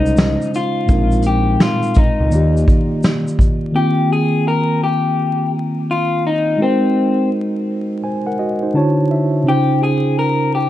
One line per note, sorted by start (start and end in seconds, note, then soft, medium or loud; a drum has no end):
0.00 0.37 C2 medium
0.00 0.91 C#3 medium
0.00 0.88 G#3 medium
0.00 0.88 C#4 soft
0.00 0.51 D#4 loud
0.00 0.91 D#4 medium
0.00 0.90 F4 medium
0.00 0.91 C5 medium
0.06 shaker soft
0.17 snare loud
0.17 shaker medium
0.42 shaker soft
0.54 1.22 F4 loud
0.54 closed hi-hat medium
0.54 shaker soft
0.86 1.57 A#1 loud
0.86 2.27 A#2 medium
0.86 2.28 G#3 medium
0.86 2.29 C4 medium
0.86 kick loud
0.86 shaker medium
0.91 2.30 D#4 medium
0.91 2.31 A#4 medium
1.11 shaker soft
1.22 closed hi-hat medium
1.22 shaker soft
1.27 1.62 G4 medium
1.60 1.98 F4 medium
1.60 snare loud
1.60 shaker medium
1.83 shaker soft
1.94 3.00 D#4 medium
1.94 kick loud
1.94 closed hi-hat medium
1.94 shaker medium
2.20 2.31 C#2 medium
2.29 2.65 D#2 medium
2.29 3.70 D#3 medium
2.29 3.71 A#3 medium
2.29 3.72 D5 medium
2.29 shaker medium
2.34 3.73 F4 medium
2.34 3.74 G4 medium
2.57 shaker soft
2.68 kick medium
2.68 closed hi-hat medium
2.68 shaker soft
3.03 snare loud
3.03 shaker medium
3.28 shaker soft
3.39 kick medium
3.39 closed hi-hat medium
3.39 shaker soft
3.72 6.55 D#3 medium
3.72 6.56 A#3 medium
3.72 6.57 C4 medium
3.72 4.12 G4 medium
3.77 6.58 F4 medium
3.77 6.58 G5 medium
4.12 4.45 G#4 medium
4.48 4.83 A#4 loud
4.84 5.50 G4 medium
5.91 6.23 F4 loud
6.27 6.62 D#4 loud
6.57 8.69 G#3 medium
6.57 8.00 D#4 medium
6.57 8.01 F#4 medium
6.62 7.29 C4 medium
6.62 8.01 A#4 medium
6.62 8.02 C5 medium
8.04 8.26 C5 medium
8.04 8.25 G#5 medium
8.26 8.39 A#4 medium
8.26 8.38 F#5 medium
8.39 8.61 F#4 medium
8.39 8.61 D#5 medium
8.63 8.96 D#4 soft
8.63 8.96 C5 medium
8.74 9.46 D3 medium
8.74 9.46 D4 medium
8.74 9.47 E4 medium
8.74 9.47 F#4 medium
8.74 9.47 C#5 medium
8.74 9.08 A5 medium
9.11 9.44 E5 medium
9.43 10.70 C#3 medium
9.43 10.70 C#4 medium
9.43 10.70 D#4 medium
9.48 10.70 F4 medium
9.48 9.81 G4 medium
9.48 10.70 C5 medium
9.83 10.18 G#4 medium
10.19 10.54 A#4 loud
10.55 10.70 G4 medium